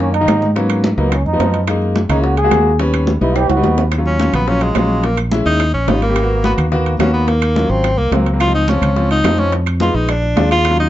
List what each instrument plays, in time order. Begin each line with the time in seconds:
Already playing: fingered electric bass F#2, grand piano D#3 A#3 C#4
0.00 trombone C#4, high bongo, high conga
0.13 trombone D#4, high conga, high timbale
0.21 grand piano D#3 A#3 D#4
0.28 fingered electric bass G#2, high bongo, low bongo, high conga, high timbale, low timbale, claves
0.42 high conga
0.56 grand piano F#3 A#3 B3 C#4, high bongo, high conga, high timbale
0.70 high bongo, high conga, high timbale, claves
0.84 high bongo, high conga, low timbale
0.98 fingered electric bass C#2, grand piano F#3 A#3 B3 D#4, trombone A#3, high conga
1.12 trombone C#4, high bongo, high conga, high timbale, claves
1.26 fingered electric bass F2, trombone D#4, high bongo, high conga
1.33 grand piano F3 B3 D#4
1.40 fingered electric bass F#2, high bongo, low bongo, high conga, high timbale, low timbale
1.54 high bongo, high conga, high timbale
1.67 grand piano G#3 A#3 D#4, high bongo, high conga, high timbale, claves
1.82 high conga
1.96 high bongo, high conga, high timbale, low timbale
2.09 fingered electric bass C#2, grand piano G#3 A#3 C#4, trombone D#4, high conga, low conga, high timbale, claves
2.24 trombone F#4, high bongo, high conga
2.37 trombone G#4, high conga, high timbale
2.44 grand piano G#3 A#3 F#4
2.51 fingered electric bass D#2, high bongo, low bongo, high conga, high timbale, low timbale, claves
2.79 grand piano G3 B3 C#4, high bongo, high conga, high timbale
2.93 high bongo, high conga, high timbale, claves
3.07 high bongo, high conga, low timbale
3.21 fingered electric bass B1, grand piano G3 B3 D#4, trombone E4, high conga
3.35 trombone G4, high bongo, high conga, high timbale, claves
3.50 fingered electric bass C#2, trombone F#4, high bongo, high conga, high timbale
3.56 grand piano G3 B3 D#4
3.63 fingered electric bass D#2, high bongo, high conga, low timbale
3.78 low bongo, high conga, low timbale
3.91 high bongo, high conga, high timbale, claves
3.98 grand piano F#3 C#4 F4
4.06 tenor saxophone C#4, high conga
4.20 grand piano F#3 C#4 F4, high bongo, high conga, high timbale, low timbale
4.33 fingered electric bass A#1, tenor saxophone B3, high conga, low conga, high timbale, claves
4.47 grand piano F#3 C#4 F4, tenor saxophone C#4, high bongo, high conga
4.61 tenor saxophone G#3, high conga, high timbale
4.75 fingered electric bass A#1, grand piano F#3 C#4 F4, high bongo, low bongo, high conga, high timbale, low timbale, claves
5.03 tenor saxophone A#3, high bongo, high conga, high timbale
5.17 high bongo, high conga, high timbale, claves
5.31 grand piano G#3 C#4 E4, high bongo, high conga, low timbale
5.46 fingered electric bass D#2, tenor saxophone D#4, high conga
5.60 high bongo, high conga, high timbale, claves
5.74 fingered electric bass A#1, tenor saxophone C#4, high bongo, high conga
5.88 fingered electric bass G#1, grand piano G3 C#4 F4, tenor saxophone D#4, high bongo, low bongo, high conga, high timbale, low timbale
6.02 tenor saxophone A#3, high bongo, high conga, high timbale
6.09 grand piano G3 C#4 G4
6.16 high bongo, high conga, high timbale, claves
6.23 grand piano A#3 B3 F#4
6.30 high conga
6.44 grand piano A#3 B3 F#4, tenor saxophone B3, high bongo, high conga, high timbale, low timbale
6.58 fingered electric bass D#2, high conga, low conga, high timbale, claves
6.72 grand piano A#3 B3 F#4, high bongo, high conga, low conga
6.86 high conga, high timbale
6.99 fingered electric bass D#2, grand piano A#3 B3 F#4, tenor saxophone C#4, high bongo, low bongo, high conga, high timbale, low timbale, claves
7.14 tenor saxophone B3
7.28 tenor saxophone A#3, high bongo, high conga, high timbale
7.42 high bongo, high conga, high timbale, claves
7.56 grand piano F#3 C#4 F4, high bongo, high conga, low timbale
7.70 fingered electric bass G#1, tenor saxophone C4, high conga
7.84 high bongo, high conga, high timbale, claves
7.98 fingered electric bass C2, tenor saxophone A#3, high bongo, high conga
8.11 fingered electric bass C#2, grand piano F#3 A#3 C4, high bongo, low bongo, high conga, high timbale, low timbale
8.26 high bongo, high conga, high timbale
8.33 grand piano F#3 A#3 C4
8.40 tenor saxophone F4, high bongo, high conga, high timbale, claves
8.47 grand piano F3 C4 D#4
8.54 tenor saxophone D#4, high conga
8.68 grand piano F3 C4 F4, tenor saxophone C#4, high bongo, high conga, high timbale, low timbale
8.82 fingered electric bass C#2, high conga, low conga, high timbale, claves
8.96 grand piano F3 C4 F4, high bongo, high conga
9.10 tenor saxophone D#4, high conga, high timbale
9.24 fingered electric bass F2, grand piano F3 C4 D#4, high bongo, low bongo, high conga, high timbale, low timbale, claves
9.38 tenor saxophone C#4, high conga
9.52 high bongo, high conga, high timbale
9.66 high bongo, high conga, high timbale, claves
9.80 grand piano G#3 B3 D#4, tenor saxophone F4, high bongo, high conga, low timbale
9.94 fingered electric bass A#1, tenor saxophone D#4, high conga
10.08 tenor saxophone D4, high bongo, high conga, high timbale, claves
10.22 high bongo, high conga
10.36 fingered electric bass D#2, grand piano G#3 D4 F4, high bongo, low bongo, high conga, high timbale, low timbale
10.51 tenor saxophone F4, high bongo, high conga, high timbale
10.57 grand piano G#3 D4 F4
10.65 high bongo, high conga, high timbale, claves
10.70 grand piano F#3 C#4 F4
10.79 tenor saxophone D#4, high conga